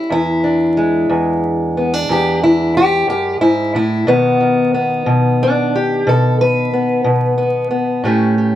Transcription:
Already playing: G3 E4
0.10 E2 E4
0.44 D4
0.77 G#3
1.09 E2
1.77 B3
1.94 D4
2.09 E2 G4
2.43 E4
2.77 G4
3.08 F#2 G4
3.41 G#2 E4
3.75 A2 E4
4.07 B2 D#3 B3
4.40 D#3
4.74 B3
5.06 B2
5.43 D4
5.75 G4
6.07 B2 A4
6.41 B4
6.73 B3
7.04 B2
7.38 B3
7.71 B3
8.04 A2 A3 C#4 G4
8.38 G4

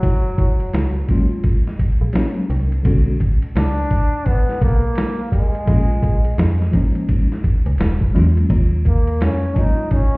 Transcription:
Already playing: F#3
0.03 F#1, kick, ride
0.38 F#1, kick, ride
0.60 ride
0.73 C#2, snare, hi-hat pedal, ride
1.07 F#3 G#3 A#3 C#4 F4, kick, ride
1.44 kick, ride
1.67 snare
1.79 kick, ride
2.01 A#1
2.13 F#3 G#3 A#3 C#4 D#4, snare, hi-hat pedal, ride
2.50 C2, ride
2.72 ride
2.83 B1 D3 G#3 B3 C#4, kick, ride
2.87 F#4
3.20 kick, ride
3.42 ride
3.56 C#2 D4, snare, hi-hat pedal, ride
3.91 kick, ride
4.26 B3, kick, ride
4.49 snare
4.62 B1 A#3, kick, ride
4.95 snare, hi-hat pedal, ride
5.32 G#3, kick, ride
5.55 ride
5.65 A#1 F3 G#3 A#3 C#4, kick, ride
5.69 F4
6.03 A#1, kick, ride
6.25 ride
6.38 F2, snare, hi-hat pedal, ride
6.62 snare
6.71 F3 G#3 A#3 C#4, kick, ride
6.75 D#4
6.95 ride
7.09 kick, ride
7.32 snare
7.44 kick, ride
7.66 C#2, ride
7.78 E1, snare, hi-hat pedal, ride
8.01 kick
8.13 E2 F#3 G#3 A#3 C#4 F4, snare, ride
8.37 ride
8.50 D#2, kick, ride
8.85 A#3, kick, ride
9.07 ride
9.21 F2 C#4, snare, hi-hat pedal, ride
9.54 F#3 G#3 A#3 C#4 D#4, kick, ride
9.58 F4
9.91 C#4, kick, ride

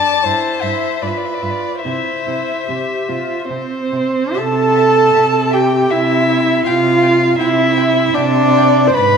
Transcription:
Already playing: D4 D5 A5
0.25 G2 E4 C5
0.62 G2 E4 E5
1.02 G2 F4 B4 D5
1.08 E5
1.17 D5
1.25 E5
1.34 D5
1.42 G2 F4 E5
1.50 D5
1.81 E4 C5 E5
1.85 C3
2.25 C3 E4
2.67 C3 G4
3.09 C3 F4
3.48 C3 C4 C5
3.93 C3
4.34 C3 A4 E5 A5
4.76 E5
5.14 C3 E5
5.51 G4 E5 G5
5.90 C3 E4 E5
6.29 E5
6.66 C3 F4 F5 G5
7.03 G5
7.39 C3 E4 E5 G5
7.77 G5
8.14 C3 D4 D5 G5
8.57 G5
8.87 C5
8.94 G#2 B4 D5 B5

